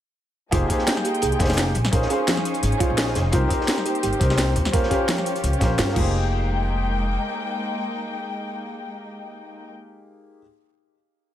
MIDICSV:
0, 0, Header, 1, 6, 480
1, 0, Start_track
1, 0, Key_signature, -4, "minor"
1, 0, Tempo, 350877
1, 717, Time_signature, 4, 2, 24, 8
1, 15514, End_track
2, 0, Start_track
2, 0, Title_t, "Grand piano"
2, 0, Program_c, 0, 0
2, 699, Note_on_c, 0, 58, 89
2, 708, Note_on_c, 0, 63, 84
2, 716, Note_on_c, 0, 67, 87
2, 725, Note_on_c, 0, 68, 82
2, 734, Note_on_c, 0, 72, 100
2, 902, Note_off_c, 0, 58, 0
2, 919, Note_off_c, 0, 63, 0
2, 922, Note_on_c, 0, 58, 84
2, 930, Note_off_c, 0, 67, 0
2, 934, Note_off_c, 0, 68, 0
2, 939, Note_off_c, 0, 72, 0
2, 940, Note_on_c, 0, 63, 76
2, 958, Note_on_c, 0, 67, 78
2, 975, Note_on_c, 0, 68, 76
2, 993, Note_on_c, 0, 72, 92
2, 1873, Note_off_c, 0, 58, 0
2, 1882, Note_off_c, 0, 63, 0
2, 1891, Note_off_c, 0, 67, 0
2, 1899, Note_off_c, 0, 68, 0
2, 1899, Note_on_c, 0, 58, 86
2, 1906, Note_on_c, 0, 63, 76
2, 1908, Note_off_c, 0, 72, 0
2, 1916, Note_on_c, 0, 67, 77
2, 1924, Note_on_c, 0, 68, 79
2, 1934, Note_on_c, 0, 72, 93
2, 2375, Note_off_c, 0, 58, 0
2, 2378, Note_off_c, 0, 63, 0
2, 2383, Note_off_c, 0, 67, 0
2, 2387, Note_off_c, 0, 68, 0
2, 2392, Note_off_c, 0, 72, 0
2, 2618, Note_on_c, 0, 61, 91
2, 2627, Note_on_c, 0, 63, 86
2, 2636, Note_on_c, 0, 65, 85
2, 2645, Note_on_c, 0, 68, 87
2, 2654, Note_on_c, 0, 72, 102
2, 2819, Note_off_c, 0, 61, 0
2, 2836, Note_off_c, 0, 63, 0
2, 2839, Note_on_c, 0, 61, 85
2, 2850, Note_off_c, 0, 65, 0
2, 2854, Note_off_c, 0, 68, 0
2, 2857, Note_on_c, 0, 63, 75
2, 2859, Note_off_c, 0, 72, 0
2, 2874, Note_on_c, 0, 65, 77
2, 2893, Note_on_c, 0, 68, 76
2, 2910, Note_on_c, 0, 72, 92
2, 3780, Note_off_c, 0, 61, 0
2, 3798, Note_off_c, 0, 63, 0
2, 3800, Note_on_c, 0, 61, 86
2, 3809, Note_off_c, 0, 65, 0
2, 3818, Note_off_c, 0, 68, 0
2, 3818, Note_on_c, 0, 63, 76
2, 3827, Note_off_c, 0, 72, 0
2, 3836, Note_on_c, 0, 65, 79
2, 3854, Note_on_c, 0, 68, 79
2, 3871, Note_on_c, 0, 72, 94
2, 4512, Note_off_c, 0, 61, 0
2, 4521, Note_off_c, 0, 63, 0
2, 4530, Note_off_c, 0, 65, 0
2, 4538, Note_on_c, 0, 60, 92
2, 4539, Note_off_c, 0, 68, 0
2, 4547, Note_off_c, 0, 72, 0
2, 4547, Note_on_c, 0, 63, 83
2, 4555, Note_on_c, 0, 67, 86
2, 4564, Note_on_c, 0, 70, 86
2, 4574, Note_on_c, 0, 72, 102
2, 4739, Note_off_c, 0, 60, 0
2, 4757, Note_off_c, 0, 63, 0
2, 4760, Note_on_c, 0, 60, 85
2, 4769, Note_off_c, 0, 67, 0
2, 4774, Note_off_c, 0, 70, 0
2, 4777, Note_on_c, 0, 63, 75
2, 4779, Note_off_c, 0, 72, 0
2, 4795, Note_on_c, 0, 67, 78
2, 4813, Note_on_c, 0, 70, 77
2, 4830, Note_on_c, 0, 72, 92
2, 5712, Note_off_c, 0, 60, 0
2, 5720, Note_off_c, 0, 63, 0
2, 5729, Note_off_c, 0, 67, 0
2, 5738, Note_off_c, 0, 70, 0
2, 5739, Note_on_c, 0, 60, 86
2, 5747, Note_off_c, 0, 72, 0
2, 5748, Note_on_c, 0, 63, 79
2, 5756, Note_on_c, 0, 67, 78
2, 5765, Note_on_c, 0, 70, 78
2, 5774, Note_on_c, 0, 72, 91
2, 6214, Note_off_c, 0, 60, 0
2, 6219, Note_off_c, 0, 63, 0
2, 6223, Note_off_c, 0, 67, 0
2, 6228, Note_off_c, 0, 70, 0
2, 6232, Note_off_c, 0, 72, 0
2, 6461, Note_on_c, 0, 61, 95
2, 6469, Note_on_c, 0, 65, 86
2, 6479, Note_on_c, 0, 67, 86
2, 6488, Note_on_c, 0, 70, 86
2, 6496, Note_on_c, 0, 72, 103
2, 6663, Note_off_c, 0, 61, 0
2, 6680, Note_off_c, 0, 65, 0
2, 6683, Note_on_c, 0, 61, 85
2, 6691, Note_off_c, 0, 67, 0
2, 6696, Note_off_c, 0, 70, 0
2, 6700, Note_off_c, 0, 72, 0
2, 6701, Note_on_c, 0, 65, 78
2, 6719, Note_on_c, 0, 67, 77
2, 6736, Note_on_c, 0, 70, 76
2, 6754, Note_on_c, 0, 72, 92
2, 7621, Note_off_c, 0, 61, 0
2, 7639, Note_off_c, 0, 65, 0
2, 7642, Note_on_c, 0, 61, 83
2, 7651, Note_off_c, 0, 67, 0
2, 7659, Note_on_c, 0, 65, 77
2, 7660, Note_off_c, 0, 70, 0
2, 7669, Note_off_c, 0, 72, 0
2, 7677, Note_on_c, 0, 67, 80
2, 7695, Note_on_c, 0, 70, 77
2, 7712, Note_on_c, 0, 72, 93
2, 8104, Note_on_c, 0, 58, 87
2, 8132, Note_on_c, 0, 63, 78
2, 8137, Note_off_c, 0, 67, 0
2, 8139, Note_off_c, 0, 61, 0
2, 8148, Note_off_c, 0, 65, 0
2, 8158, Note_on_c, 0, 67, 78
2, 8166, Note_off_c, 0, 70, 0
2, 8174, Note_off_c, 0, 72, 0
2, 8184, Note_on_c, 0, 68, 78
2, 8211, Note_on_c, 0, 72, 94
2, 14208, Note_off_c, 0, 58, 0
2, 14221, Note_off_c, 0, 63, 0
2, 14235, Note_off_c, 0, 67, 0
2, 14248, Note_off_c, 0, 68, 0
2, 14261, Note_off_c, 0, 72, 0
2, 15514, End_track
3, 0, Start_track
3, 0, Title_t, "Synth arpeggio sound"
3, 0, Program_c, 1, 84
3, 717, Note_on_c, 1, 65, 107
3, 935, Note_off_c, 1, 65, 0
3, 1437, Note_on_c, 1, 67, 74
3, 1655, Note_off_c, 1, 67, 0
3, 1676, Note_on_c, 1, 68, 82
3, 1905, Note_off_c, 1, 68, 0
3, 2636, Note_on_c, 1, 70, 88
3, 2854, Note_off_c, 1, 70, 0
3, 2876, Note_on_c, 1, 68, 78
3, 3015, Note_off_c, 1, 68, 0
3, 3116, Note_on_c, 1, 53, 104
3, 3345, Note_off_c, 1, 53, 0
3, 3835, Note_on_c, 1, 65, 105
3, 4054, Note_off_c, 1, 65, 0
3, 4555, Note_on_c, 1, 65, 105
3, 4774, Note_off_c, 1, 65, 0
3, 5277, Note_on_c, 1, 67, 75
3, 5495, Note_off_c, 1, 67, 0
3, 5516, Note_on_c, 1, 67, 84
3, 5745, Note_off_c, 1, 67, 0
3, 6477, Note_on_c, 1, 70, 84
3, 6695, Note_off_c, 1, 70, 0
3, 6716, Note_on_c, 1, 67, 80
3, 6855, Note_off_c, 1, 67, 0
3, 6955, Note_on_c, 1, 53, 108
3, 7185, Note_off_c, 1, 53, 0
3, 7676, Note_on_c, 1, 53, 82
3, 7815, Note_off_c, 1, 53, 0
3, 7916, Note_on_c, 1, 65, 102
3, 8054, Note_off_c, 1, 65, 0
3, 8155, Note_on_c, 1, 65, 97
3, 8602, Note_off_c, 1, 65, 0
3, 15514, End_track
4, 0, Start_track
4, 0, Title_t, "String section"
4, 0, Program_c, 2, 48
4, 716, Note_on_c, 2, 56, 79
4, 717, Note_on_c, 2, 58, 74
4, 717, Note_on_c, 2, 63, 73
4, 717, Note_on_c, 2, 79, 90
4, 2380, Note_off_c, 2, 56, 0
4, 2380, Note_off_c, 2, 58, 0
4, 2380, Note_off_c, 2, 63, 0
4, 2380, Note_off_c, 2, 79, 0
4, 2398, Note_on_c, 2, 61, 74
4, 2398, Note_on_c, 2, 68, 93
4, 2399, Note_on_c, 2, 63, 77
4, 2399, Note_on_c, 2, 72, 83
4, 4536, Note_off_c, 2, 61, 0
4, 4536, Note_off_c, 2, 68, 0
4, 4560, Note_on_c, 2, 58, 80
4, 4560, Note_on_c, 2, 67, 91
4, 6199, Note_off_c, 2, 63, 0
4, 6216, Note_off_c, 2, 67, 0
4, 6222, Note_off_c, 2, 58, 0
4, 6232, Note_on_c, 2, 67, 94
4, 6233, Note_on_c, 2, 61, 76
4, 6233, Note_on_c, 2, 65, 76
4, 8103, Note_off_c, 2, 72, 0
4, 8135, Note_off_c, 2, 67, 0
4, 8136, Note_off_c, 2, 61, 0
4, 8136, Note_off_c, 2, 65, 0
4, 8156, Note_on_c, 2, 58, 75
4, 8156, Note_on_c, 2, 79, 89
4, 8157, Note_on_c, 2, 56, 84
4, 8158, Note_on_c, 2, 63, 76
4, 13276, Note_off_c, 2, 56, 0
4, 13276, Note_off_c, 2, 58, 0
4, 13276, Note_off_c, 2, 79, 0
4, 13277, Note_off_c, 2, 63, 0
4, 15514, End_track
5, 0, Start_track
5, 0, Title_t, "Upright bass"
5, 0, Program_c, 3, 32
5, 718, Note_on_c, 3, 29, 96
5, 834, Note_off_c, 3, 29, 0
5, 1677, Note_on_c, 3, 36, 78
5, 1793, Note_off_c, 3, 36, 0
5, 1917, Note_on_c, 3, 29, 81
5, 2379, Note_off_c, 3, 29, 0
5, 2396, Note_on_c, 3, 34, 96
5, 2614, Note_off_c, 3, 34, 0
5, 2636, Note_on_c, 3, 34, 97
5, 2753, Note_off_c, 3, 34, 0
5, 3597, Note_on_c, 3, 32, 90
5, 3713, Note_off_c, 3, 32, 0
5, 3967, Note_on_c, 3, 34, 99
5, 4299, Note_off_c, 3, 34, 0
5, 4318, Note_on_c, 3, 29, 94
5, 4535, Note_off_c, 3, 29, 0
5, 4556, Note_on_c, 3, 36, 99
5, 4673, Note_off_c, 3, 36, 0
5, 5517, Note_on_c, 3, 31, 78
5, 5634, Note_off_c, 3, 31, 0
5, 5756, Note_on_c, 3, 36, 81
5, 6219, Note_off_c, 3, 36, 0
5, 6237, Note_on_c, 3, 39, 102
5, 6455, Note_off_c, 3, 39, 0
5, 6477, Note_on_c, 3, 39, 98
5, 6593, Note_off_c, 3, 39, 0
5, 7436, Note_on_c, 3, 37, 91
5, 7553, Note_off_c, 3, 37, 0
5, 7677, Note_on_c, 3, 34, 100
5, 7917, Note_on_c, 3, 43, 94
5, 7937, Note_off_c, 3, 34, 0
5, 8149, Note_off_c, 3, 43, 0
5, 8157, Note_on_c, 3, 29, 98
5, 9782, Note_off_c, 3, 29, 0
5, 15514, End_track
6, 0, Start_track
6, 0, Title_t, "Drums"
6, 717, Note_on_c, 9, 36, 117
6, 717, Note_on_c, 9, 42, 98
6, 721, Note_off_c, 9, 42, 0
6, 721, Note_on_c, 9, 42, 97
6, 854, Note_off_c, 9, 36, 0
6, 858, Note_off_c, 9, 42, 0
6, 957, Note_on_c, 9, 36, 59
6, 957, Note_on_c, 9, 42, 69
6, 961, Note_off_c, 9, 42, 0
6, 961, Note_on_c, 9, 42, 67
6, 1072, Note_on_c, 9, 38, 42
6, 1094, Note_off_c, 9, 36, 0
6, 1098, Note_off_c, 9, 42, 0
6, 1193, Note_off_c, 9, 38, 0
6, 1193, Note_on_c, 9, 38, 121
6, 1196, Note_on_c, 9, 42, 92
6, 1197, Note_off_c, 9, 38, 0
6, 1197, Note_off_c, 9, 42, 0
6, 1197, Note_on_c, 9, 38, 120
6, 1197, Note_on_c, 9, 42, 95
6, 1328, Note_on_c, 9, 40, 37
6, 1334, Note_off_c, 9, 38, 0
6, 1334, Note_off_c, 9, 42, 0
6, 1431, Note_on_c, 9, 42, 73
6, 1437, Note_off_c, 9, 42, 0
6, 1437, Note_on_c, 9, 42, 69
6, 1464, Note_off_c, 9, 40, 0
6, 1567, Note_off_c, 9, 42, 0
6, 1567, Note_on_c, 9, 42, 38
6, 1668, Note_off_c, 9, 42, 0
6, 1668, Note_on_c, 9, 42, 97
6, 1677, Note_off_c, 9, 42, 0
6, 1677, Note_on_c, 9, 42, 96
6, 1808, Note_off_c, 9, 42, 0
6, 1808, Note_on_c, 9, 42, 38
6, 1909, Note_off_c, 9, 42, 0
6, 1909, Note_on_c, 9, 42, 73
6, 1911, Note_on_c, 9, 38, 91
6, 1916, Note_on_c, 9, 36, 109
6, 1918, Note_off_c, 9, 42, 0
6, 1918, Note_on_c, 9, 42, 70
6, 1976, Note_off_c, 9, 38, 0
6, 1976, Note_on_c, 9, 38, 93
6, 1994, Note_off_c, 9, 42, 0
6, 1994, Note_on_c, 9, 42, 74
6, 2041, Note_off_c, 9, 38, 0
6, 2041, Note_on_c, 9, 38, 89
6, 2044, Note_off_c, 9, 42, 0
6, 2044, Note_on_c, 9, 42, 60
6, 2048, Note_on_c, 9, 40, 37
6, 2053, Note_off_c, 9, 36, 0
6, 2098, Note_off_c, 9, 42, 0
6, 2098, Note_on_c, 9, 42, 67
6, 2110, Note_off_c, 9, 38, 0
6, 2110, Note_on_c, 9, 38, 82
6, 2155, Note_off_c, 9, 42, 0
6, 2155, Note_on_c, 9, 42, 88
6, 2158, Note_off_c, 9, 38, 0
6, 2158, Note_off_c, 9, 42, 0
6, 2158, Note_on_c, 9, 38, 119
6, 2158, Note_on_c, 9, 42, 100
6, 2160, Note_off_c, 9, 38, 0
6, 2160, Note_on_c, 9, 38, 105
6, 2185, Note_off_c, 9, 40, 0
6, 2295, Note_off_c, 9, 42, 0
6, 2296, Note_off_c, 9, 38, 0
6, 2390, Note_on_c, 9, 42, 63
6, 2397, Note_off_c, 9, 42, 0
6, 2397, Note_on_c, 9, 42, 68
6, 2523, Note_off_c, 9, 42, 0
6, 2523, Note_on_c, 9, 42, 47
6, 2526, Note_on_c, 9, 40, 47
6, 2634, Note_off_c, 9, 42, 0
6, 2634, Note_on_c, 9, 42, 91
6, 2636, Note_off_c, 9, 42, 0
6, 2636, Note_on_c, 9, 36, 120
6, 2636, Note_on_c, 9, 42, 92
6, 2663, Note_off_c, 9, 40, 0
6, 2763, Note_on_c, 9, 38, 60
6, 2773, Note_off_c, 9, 36, 0
6, 2773, Note_off_c, 9, 42, 0
6, 2873, Note_on_c, 9, 42, 74
6, 2877, Note_off_c, 9, 42, 0
6, 2877, Note_on_c, 9, 42, 69
6, 2900, Note_off_c, 9, 38, 0
6, 3014, Note_off_c, 9, 42, 0
6, 3116, Note_on_c, 9, 42, 91
6, 3117, Note_off_c, 9, 42, 0
6, 3117, Note_on_c, 9, 38, 127
6, 3117, Note_on_c, 9, 42, 94
6, 3118, Note_off_c, 9, 38, 0
6, 3118, Note_on_c, 9, 38, 109
6, 3245, Note_on_c, 9, 40, 37
6, 3253, Note_off_c, 9, 42, 0
6, 3255, Note_off_c, 9, 38, 0
6, 3357, Note_on_c, 9, 42, 67
6, 3360, Note_off_c, 9, 42, 0
6, 3360, Note_on_c, 9, 42, 71
6, 3382, Note_off_c, 9, 40, 0
6, 3477, Note_off_c, 9, 42, 0
6, 3477, Note_on_c, 9, 42, 46
6, 3484, Note_off_c, 9, 42, 0
6, 3484, Note_on_c, 9, 42, 37
6, 3595, Note_off_c, 9, 42, 0
6, 3595, Note_on_c, 9, 42, 95
6, 3604, Note_off_c, 9, 42, 0
6, 3604, Note_on_c, 9, 42, 96
6, 3723, Note_off_c, 9, 42, 0
6, 3723, Note_on_c, 9, 42, 37
6, 3836, Note_off_c, 9, 42, 0
6, 3836, Note_on_c, 9, 36, 115
6, 3836, Note_on_c, 9, 42, 67
6, 3840, Note_off_c, 9, 42, 0
6, 3840, Note_on_c, 9, 42, 66
6, 3973, Note_off_c, 9, 36, 0
6, 3976, Note_off_c, 9, 42, 0
6, 4073, Note_on_c, 9, 38, 126
6, 4073, Note_on_c, 9, 42, 98
6, 4077, Note_off_c, 9, 38, 0
6, 4077, Note_off_c, 9, 42, 0
6, 4077, Note_on_c, 9, 38, 124
6, 4077, Note_on_c, 9, 42, 87
6, 4198, Note_off_c, 9, 38, 0
6, 4198, Note_on_c, 9, 38, 50
6, 4214, Note_off_c, 9, 42, 0
6, 4311, Note_off_c, 9, 38, 0
6, 4311, Note_on_c, 9, 38, 96
6, 4313, Note_on_c, 9, 42, 66
6, 4321, Note_off_c, 9, 42, 0
6, 4321, Note_on_c, 9, 42, 80
6, 4448, Note_off_c, 9, 38, 0
6, 4458, Note_off_c, 9, 42, 0
6, 4548, Note_on_c, 9, 42, 94
6, 4553, Note_off_c, 9, 42, 0
6, 4553, Note_on_c, 9, 42, 93
6, 4557, Note_on_c, 9, 36, 121
6, 4690, Note_off_c, 9, 42, 0
6, 4693, Note_off_c, 9, 36, 0
6, 4795, Note_on_c, 9, 42, 66
6, 4797, Note_on_c, 9, 36, 66
6, 4800, Note_off_c, 9, 42, 0
6, 4800, Note_on_c, 9, 42, 65
6, 4934, Note_off_c, 9, 36, 0
6, 4934, Note_on_c, 9, 38, 46
6, 4937, Note_off_c, 9, 42, 0
6, 5035, Note_off_c, 9, 38, 0
6, 5035, Note_on_c, 9, 38, 127
6, 5035, Note_on_c, 9, 42, 90
6, 5045, Note_off_c, 9, 42, 0
6, 5045, Note_on_c, 9, 42, 85
6, 5046, Note_off_c, 9, 38, 0
6, 5046, Note_on_c, 9, 38, 121
6, 5165, Note_on_c, 9, 40, 36
6, 5181, Note_off_c, 9, 42, 0
6, 5182, Note_off_c, 9, 38, 0
6, 5275, Note_on_c, 9, 42, 66
6, 5283, Note_off_c, 9, 42, 0
6, 5283, Note_on_c, 9, 42, 71
6, 5302, Note_off_c, 9, 40, 0
6, 5404, Note_off_c, 9, 42, 0
6, 5404, Note_on_c, 9, 42, 37
6, 5515, Note_off_c, 9, 42, 0
6, 5515, Note_on_c, 9, 42, 88
6, 5517, Note_off_c, 9, 42, 0
6, 5517, Note_on_c, 9, 42, 85
6, 5645, Note_off_c, 9, 42, 0
6, 5645, Note_on_c, 9, 42, 35
6, 5756, Note_off_c, 9, 42, 0
6, 5756, Note_on_c, 9, 36, 116
6, 5756, Note_on_c, 9, 42, 65
6, 5765, Note_off_c, 9, 42, 0
6, 5765, Note_on_c, 9, 42, 73
6, 5885, Note_on_c, 9, 40, 37
6, 5889, Note_on_c, 9, 38, 55
6, 5893, Note_off_c, 9, 36, 0
6, 5902, Note_off_c, 9, 42, 0
6, 5994, Note_off_c, 9, 38, 0
6, 5994, Note_on_c, 9, 38, 112
6, 5996, Note_off_c, 9, 38, 0
6, 5996, Note_on_c, 9, 38, 124
6, 5996, Note_on_c, 9, 42, 92
6, 6002, Note_off_c, 9, 42, 0
6, 6002, Note_on_c, 9, 42, 88
6, 6022, Note_off_c, 9, 40, 0
6, 6133, Note_off_c, 9, 38, 0
6, 6138, Note_off_c, 9, 42, 0
6, 6234, Note_on_c, 9, 42, 69
6, 6237, Note_off_c, 9, 42, 0
6, 6237, Note_on_c, 9, 42, 65
6, 6366, Note_on_c, 9, 40, 50
6, 6367, Note_off_c, 9, 42, 0
6, 6367, Note_on_c, 9, 42, 42
6, 6476, Note_off_c, 9, 42, 0
6, 6476, Note_on_c, 9, 42, 92
6, 6477, Note_on_c, 9, 36, 125
6, 6478, Note_off_c, 9, 42, 0
6, 6478, Note_on_c, 9, 42, 91
6, 6503, Note_off_c, 9, 40, 0
6, 6607, Note_on_c, 9, 38, 52
6, 6613, Note_off_c, 9, 36, 0
6, 6615, Note_off_c, 9, 42, 0
6, 6717, Note_on_c, 9, 36, 66
6, 6717, Note_on_c, 9, 42, 64
6, 6744, Note_off_c, 9, 38, 0
6, 6854, Note_off_c, 9, 36, 0
6, 6854, Note_off_c, 9, 42, 0
6, 6955, Note_on_c, 9, 42, 96
6, 6958, Note_off_c, 9, 42, 0
6, 6958, Note_on_c, 9, 38, 124
6, 6958, Note_on_c, 9, 42, 89
6, 6959, Note_off_c, 9, 38, 0
6, 6959, Note_on_c, 9, 38, 107
6, 7088, Note_on_c, 9, 40, 35
6, 7095, Note_off_c, 9, 42, 0
6, 7096, Note_off_c, 9, 38, 0
6, 7198, Note_on_c, 9, 42, 63
6, 7199, Note_off_c, 9, 42, 0
6, 7199, Note_on_c, 9, 42, 65
6, 7225, Note_off_c, 9, 40, 0
6, 7327, Note_off_c, 9, 42, 0
6, 7327, Note_on_c, 9, 42, 35
6, 7333, Note_off_c, 9, 42, 0
6, 7333, Note_on_c, 9, 42, 48
6, 7437, Note_off_c, 9, 42, 0
6, 7437, Note_on_c, 9, 42, 86
6, 7442, Note_off_c, 9, 42, 0
6, 7442, Note_on_c, 9, 42, 86
6, 7568, Note_off_c, 9, 42, 0
6, 7568, Note_on_c, 9, 42, 34
6, 7671, Note_on_c, 9, 38, 106
6, 7677, Note_on_c, 9, 36, 114
6, 7678, Note_off_c, 9, 42, 0
6, 7678, Note_on_c, 9, 42, 64
6, 7687, Note_off_c, 9, 42, 0
6, 7687, Note_on_c, 9, 42, 77
6, 7807, Note_off_c, 9, 38, 0
6, 7813, Note_off_c, 9, 36, 0
6, 7824, Note_off_c, 9, 42, 0
6, 7916, Note_on_c, 9, 38, 127
6, 7916, Note_on_c, 9, 42, 90
6, 7921, Note_off_c, 9, 42, 0
6, 7921, Note_on_c, 9, 42, 84
6, 8053, Note_off_c, 9, 38, 0
6, 8058, Note_off_c, 9, 42, 0
6, 8059, Note_on_c, 9, 38, 55
6, 8157, Note_on_c, 9, 36, 115
6, 8157, Note_on_c, 9, 49, 84
6, 8196, Note_off_c, 9, 38, 0
6, 8293, Note_off_c, 9, 49, 0
6, 8294, Note_off_c, 9, 36, 0
6, 15514, End_track
0, 0, End_of_file